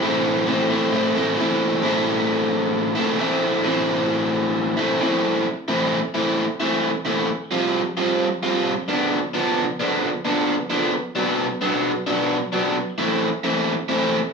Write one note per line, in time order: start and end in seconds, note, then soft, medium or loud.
0.01 0.69 A2 medium
0.01 0.45 E3 loud
0.01 0.46 A3 loud
0.01 0.48 C4 loud
0.01 0.49 E4 loud
0.46 0.90 E3 medium
0.46 0.72 A3 medium
0.46 0.70 C4 medium
0.46 0.68 E4 medium
0.69 0.92 A3 medium
0.69 0.91 C4 medium
0.69 0.90 E4 medium
0.92 1.37 A2 loud
0.92 1.36 E3 loud
0.92 1.17 A3 loud
0.92 1.15 C4 loud
0.92 1.14 E4 loud
1.15 1.37 A3 medium
1.15 1.38 C4 medium
1.15 1.39 E4 medium
1.37 1.81 E3 medium
1.37 1.82 A3 medium
1.37 1.82 C4 medium
1.37 1.83 E4 medium
1.82 2.99 A2 medium
1.82 2.98 E3 medium
1.82 2.97 A3 medium
1.82 2.96 C4 medium
1.82 2.95 E4 loud
2.95 3.17 A2 medium
2.95 3.18 E3 medium
2.95 3.19 A3 medium
2.95 3.20 C4 medium
2.95 3.21 E4 medium
3.18 3.63 A2 medium
3.18 3.64 E3 medium
3.18 3.65 A3 medium
3.18 3.66 C4 medium
3.18 3.67 E4 medium
3.64 4.76 A2 loud
3.64 4.77 E3 medium
3.64 4.77 A3 medium
3.64 4.77 C4 medium
3.64 4.76 E4 loud
4.77 4.99 A2 medium
4.77 5.00 E3 medium
4.77 5.00 A3 medium
4.77 4.99 C4 medium
4.77 4.99 E4 medium
5.00 5.44 A2 medium
5.00 5.45 E3 medium
5.00 5.45 A3 medium
5.00 5.46 C4 medium
5.00 5.46 E4 medium
5.68 5.99 E3 medium
5.68 5.99 A3 medium
5.68 5.98 C4 medium
5.68 5.98 E4 medium
6.14 6.45 E3 medium
6.14 6.44 A3 medium
6.14 6.44 C4 medium
6.14 6.44 E4 medium
6.60 6.90 E3 medium
6.60 6.90 A3 medium
6.60 6.90 C4 medium
6.60 6.90 E4 medium
7.06 7.29 E3 medium
7.06 7.29 A3 medium
7.06 7.29 C4 medium
7.06 7.28 E4 medium
7.52 7.82 F3 medium
7.52 7.81 G3 medium
7.52 7.81 C4 medium
7.52 7.81 F4 medium
7.97 8.27 F3 medium
7.97 8.27 G3 medium
7.97 8.27 C4 medium
7.97 8.27 F4 medium
8.43 8.73 F3 medium
8.43 8.73 G3 medium
8.43 8.72 C4 medium
8.43 8.72 F4 medium
8.88 9.18 D3 medium
8.88 9.18 F3 medium
8.88 9.18 B3 medium
8.88 9.18 D4 medium
9.34 9.64 D3 medium
9.34 9.64 F3 medium
9.34 9.64 B3 medium
9.34 9.63 D4 medium
9.80 10.09 D3 medium
9.80 10.09 F3 medium
9.80 10.09 B3 medium
9.80 10.09 D4 medium
10.25 10.55 D3 medium
10.25 10.55 F3 medium
10.25 10.55 B3 medium
10.25 10.54 D4 medium
10.70 10.94 D3 medium
10.70 10.93 F3 medium
10.70 10.93 B3 medium
10.70 10.93 D4 medium
11.15 11.46 B2 medium
11.15 11.46 F#3 medium
11.15 11.45 B3 medium
11.15 11.45 D4 medium
11.61 11.92 B2 medium
11.61 11.91 F#3 medium
11.61 11.91 B3 medium
11.61 11.91 D4 medium
12.07 12.37 B2 medium
12.07 12.37 F#3 medium
12.07 12.36 B3 medium
12.07 12.36 D4 medium
12.52 12.76 B2 medium
12.52 12.76 F#3 medium
12.52 12.76 B3 medium
12.52 12.75 D4 medium
12.98 13.28 E3 medium
12.98 13.28 A3 medium
12.98 13.28 C4 medium
12.98 13.28 E4 medium
13.44 13.74 E3 medium
13.44 13.74 A3 medium
13.44 13.74 C4 medium
13.44 13.73 E4 medium
13.89 14.19 E3 medium
13.89 14.19 A3 medium
13.89 14.19 C4 medium
13.89 14.19 E4 medium